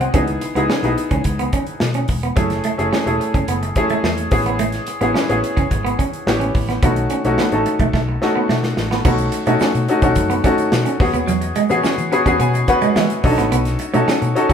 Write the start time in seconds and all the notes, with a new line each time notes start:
Already playing: C4 D#4 F#4 G#4 C5 D#5
0.01 C4 F#5, closed hi-hat
0.14 C#2 B3 C#4 D#4 E4 G#4, kick, closed hi-hat
0.28 closed hi-hat
0.41 muted clean electric guitar stroke, closed hi-hat
0.55 C#2 B3 D#4 E4 G#4, closed hi-hat
0.70 C#4, snare
0.83 B1 B3 D#4 E4 G#4, muted clean electric guitar stroke, closed hi-hat
0.98 closed hi-hat
1.11 C#2 C#4, kick, closed hi-hat
1.24 C#2, muted clean electric guitar stroke, kick, closed hi-hat
1.39 B3, closed hi-hat
1.53 C#4, kick, closed hi-hat
1.67 closed hi-hat
1.80 B2, snare
1.94 C#4, closed hi-hat
2.08 E1, muted clean electric guitar stroke, kick, open hi-hat
2.23 B3, closed hi-hat
2.36 F#1 F#3 A3 C#4 E4 G#4, kick, closed hi-hat
2.50 muted clean electric guitar stroke, snare, closed hi-hat
2.64 A3, closed hi-hat
2.78 F#1 A3 C#4 E4 G#4, closed hi-hat
2.93 C#4, snare
3.06 E1 A3 C#4 E4 G#4, closed hi-hat
3.20 muted clean electric guitar stroke, closed hi-hat
3.34 F#1 C#4, kick, closed hi-hat
3.48 F#1 B3, closed hi-hat
3.63 muted clean electric guitar stroke, closed hi-hat
3.76 A3 C#4 E4 G#4, kick, closed hi-hat
3.90 A3, closed hi-hat
4.03 E2 A3, snare
4.18 closed hi-hat
4.31 A1 B3 C#4 E4 G#4, muted clean electric guitar stroke, kick, open hi-hat
4.46 B3, closed hi-hat
4.59 A3, closed hi-hat
4.72 snare, closed hi-hat
4.87 muted clean electric guitar stroke, closed hi-hat
5.01 A1 B3 C#4 E4 G#4, closed hi-hat
5.14 C#4, snare
5.29 A1 B3 C#4 E4 G#4, muted clean electric guitar stroke, closed hi-hat
5.44 closed hi-hat
5.57 F#1 C#4, kick, closed hi-hat
5.71 G#1, muted clean electric guitar stroke, kick, closed hi-hat
5.85 B3, closed hi-hat
5.99 C#4, kick, closed hi-hat
6.13 closed hi-hat
6.27 A1 B3 C#4 E4 G4, snare
6.40 C#4, closed hi-hat
6.55 A1, muted clean electric guitar stroke, kick, open hi-hat
6.69 B3, snare, closed hi-hat
6.82 B1 A3 B3 C#4 D#4 F#4, kick, closed hi-hat
6.96 muted clean electric guitar stroke, closed hi-hat
7.10 C#4, closed hi-hat
7.25 B1 A3 C#4 D#4 F#4, closed hi-hat
7.38 B3, snare
7.52 A1 A3 C#4 D#4 A4, closed hi-hat
7.66 muted clean electric guitar stroke, closed hi-hat
7.79 B1 A3, kick, closed hi-hat
7.93 B1 A3, kick, snare
8.09 muted clean electric guitar stroke
8.22 A3 C#4 D#4 F#4, snare
8.36 B3
8.49 B2 A3, snare
8.63 snare
8.77 A1, muted clean electric guitar stroke, snare
8.91 B3, snare
9.05 B1 A3 B3 C#4 D#4 F#4, kick, crash, shaker
9.18 closed hi-hat, shaker
9.32 muted clean electric guitar stroke, closed hi-hat, shaker
9.46 B2 A3 C#4 D#4 F#4, closed hi-hat, shaker
9.60 C#4, muted fingered electric bass stroke, snare, shaker
9.75 B2, muted clean electric guitar stroke, closed hi-hat, shaker
9.88 A3 C#4 D#4 F#4, closed hi-hat
10.02 B1 A3 C#4 D#4 F#4, kick, closed hi-hat, shaker
10.15 F#2, muted clean electric guitar stroke, kick, closed hi-hat, shaker
10.30 B3, closed hi-hat, shaker
10.44 A3 C#4 D#4 F#4, kick, closed hi-hat, shaker
10.58 closed hi-hat, shaker
10.72 B2, snare, shaker
10.85 C#4, closed hi-hat, shaker
11.00 E2 B3 C#4 F#4 G#4, muted clean electric guitar stroke, kick, open hi-hat
11.14 D#2 B3, closed hi-hat, shaker
11.28 E2 F#3, closed hi-hat, shaker
11.41 muted clean electric guitar stroke, closed hi-hat, shaker
11.56 G#3, closed hi-hat, shaker
11.69 E3 B3 C#4 F#4 G#4, closed hi-hat, shaker
11.84 C#4, muted fingered electric bass stroke, snare, shaker
11.98 E3, closed hi-hat, shaker
12.12 B3 C#4 F#4 G#4 B5, muted clean electric guitar stroke, closed hi-hat
12.26 E2 B3 C#4 F#4 G#4, kick, closed hi-hat, shaker
12.40 B2 B3 G#5, closed hi-hat, shaker
12.54 muted clean electric guitar stroke, closed hi-hat, shaker
12.68 B3 C#4 F#4 B4 F#5, kick, closed hi-hat, shaker
12.82 G#3, closed hi-hat, shaker
12.96 E3 G#3 E5, snare, shaker
13.10 closed hi-hat, shaker
13.24 B1 C#4 D4 F#4 A4 D#5, muted clean electric guitar stroke, kick, open hi-hat
13.31 D#4
13.38 A1 B3, snare, closed hi-hat, shaker
13.52 B1 B3, closed hi-hat, shaker
13.65 snare, closed hi-hat, shaker
13.79 muted clean electric guitar stroke, closed hi-hat, shaker
13.94 B2 A3 C#4 D#4 F#4 A4, closed hi-hat, shaker
14.08 C#4, muted fingered electric bass stroke, snare, shaker
14.22 B2, muted clean electric guitar stroke, closed hi-hat, shaker
14.35 C#4 D#4 F#4 A4, closed hi-hat
14.49 B1 C#4 D#4 F#4, kick, closed hi-hat